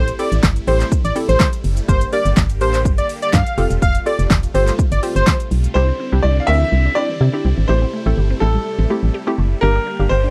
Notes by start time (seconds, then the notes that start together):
Already playing: A1 C3 G3 A3 E4 C5
0.08 closed hi-hat, shaker
0.19 C4 E4 G4 A4 D5, open hi-hat, shaker
0.32 A1, closed hi-hat, shaker
0.43 G1, kick, snare, clap, shaker
0.56 closed hi-hat, shaker
0.67 A1 C4 E4 G4 A4 C5, open hi-hat, shaker
0.80 clap, closed hi-hat, shaker
0.92 kick, shaker
1.05 A1 D5, closed hi-hat, shaker
1.16 C4 E4 G4 A4, open hi-hat, shaker
1.29 A1 C5, closed hi-hat, shaker
1.40 kick, snare, clap, shaker
1.53 closed hi-hat, shaker
1.64 F#1, open hi-hat, shaker
1.77 closed hi-hat, shaker
1.88 G1 D3 A#3 D4 G4 A#4 C5, kick, shaker
2.01 closed hi-hat, shaker
2.12 A#3 D4 G4 A#4 D5, open hi-hat, shaker
2.25 G1, closed hi-hat, shaker
2.37 G1, kick, snare, clap, shaker
2.50 closed hi-hat, shaker
2.61 A1 A#3 D4 G4 A#4 C5, open hi-hat, shaker
2.74 clap, closed hi-hat, shaker
2.85 G1, kick, shaker
2.98 D5, closed hi-hat, shaker
3.09 open hi-hat, shaker
3.22 D5, closed hi-hat, shaker
3.33 G2 F5, kick, snare, clap, shaker
3.46 closed hi-hat, shaker
3.58 F1 C3 A3 C4 F4 G4 A4, open hi-hat, shaker
3.70 E1, closed hi-hat, shaker
3.82 F1 F5, kick, shaker
3.95 closed hi-hat, shaker
4.06 C4 F4 G4 A4 D5, open hi-hat, shaker
4.19 F1, closed hi-hat, shaker
4.30 F1, kick, snare, clap, shaker
4.43 closed hi-hat, shaker
4.54 G1 C4 F4 G4 A4 C5, open hi-hat, shaker
4.68 clap, closed hi-hat, shaker
4.79 kick, shaker
4.92 G1 D5, closed hi-hat, shaker
5.03 C4 F4 G4 C5, open hi-hat, shaker
5.16 G1 C5, closed hi-hat, shaker
5.27 kick, snare, clap, shaker
5.40 closed hi-hat, shaker
5.51 B1, open hi-hat, shaker
5.64 closed hi-hat, shaker
5.74 C2 D3 G3 C4 D4 E4 G4 C5
5.88 D4
6.00 C4
6.12 C2 C4 D4 E4 G4
6.23 C2 E4 D5
6.37 D4 F5
6.47 D2 C4 D4 E4 A#4 E5
6.61 E3
6.72 C2
6.85 D4
6.95 C4 D4 E4 G4 D5
7.09 E3
7.21 C3 E4
7.33 C4 D4 E4 G4
7.45 C2 C4
7.58 G#1
7.68 A1 C3 A3 C4 E4 G4 C5
7.82 C4
7.93 A3
8.06 A1 A3 C4 E4 A4
8.17 G1 G4
8.30 C4
8.40 A1 A3 C4 E4 A4
8.54 G3
8.79 A1 C4
8.90 A3 C4 E4 G4
9.03 A1 G3
9.14 G4
9.27 A3 C4 E4 G4
9.38 F#1 A3
9.61 G1 D3 G3 A#3 D4 G4 A#4
9.75 D4
9.87 A#3
9.99 G1 G3 A#3 D4 G4
10.09 G1 G4 C5
10.24 D4